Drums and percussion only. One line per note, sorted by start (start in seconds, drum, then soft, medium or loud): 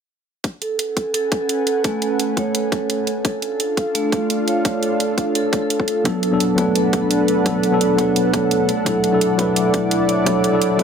0.44 kick loud
0.44 closed hi-hat medium
0.62 closed hi-hat medium
0.79 closed hi-hat medium
0.97 kick medium
0.97 closed hi-hat medium
1.14 closed hi-hat medium
1.32 kick medium
1.32 closed hi-hat medium
1.49 closed hi-hat medium
1.67 closed hi-hat medium
1.84 kick loud
1.84 closed hi-hat medium
2.02 closed hi-hat medium
2.19 closed hi-hat medium
2.37 kick medium
2.37 closed hi-hat medium
2.55 closed hi-hat medium
2.72 kick loud
2.72 closed hi-hat medium
2.90 closed hi-hat medium
3.07 closed hi-hat medium
3.25 kick loud
3.25 closed hi-hat medium
3.42 closed hi-hat medium
3.60 closed hi-hat medium
3.77 kick medium
3.77 closed hi-hat medium
3.95 closed hi-hat medium
4.12 kick medium
4.12 closed hi-hat medium
4.30 closed hi-hat medium
4.48 closed hi-hat medium
4.65 kick loud
4.65 closed hi-hat medium
4.83 closed hi-hat medium
5.00 closed hi-hat medium
5.18 kick medium
5.18 closed hi-hat medium
5.35 closed hi-hat medium
5.53 kick medium
5.53 closed hi-hat medium
5.70 closed hi-hat medium
5.80 kick medium
5.88 closed hi-hat medium
6.05 kick loud
6.05 closed hi-hat medium
6.23 closed hi-hat medium
6.40 closed hi-hat medium
6.58 kick medium
6.58 closed hi-hat medium
6.75 closed hi-hat medium
6.93 kick medium
6.93 closed hi-hat medium
7.11 closed hi-hat medium
7.28 closed hi-hat medium
7.46 kick loud
7.46 closed hi-hat medium
7.63 closed hi-hat medium
7.81 closed hi-hat medium
7.98 kick soft
7.98 closed hi-hat medium
8.16 closed hi-hat medium
8.34 kick medium
8.34 closed hi-hat medium
8.51 closed hi-hat medium
8.69 closed hi-hat medium
8.86 kick loud
8.86 closed hi-hat medium
9.04 closed hi-hat medium
9.21 closed hi-hat medium
9.39 kick medium
9.39 closed hi-hat medium
9.56 closed hi-hat medium
9.74 kick medium
9.74 closed hi-hat medium
9.91 closed hi-hat medium
10.09 closed hi-hat medium
10.26 kick loud
10.26 closed hi-hat medium
10.44 closed hi-hat medium
10.62 closed hi-hat medium
10.79 kick medium
10.79 closed hi-hat medium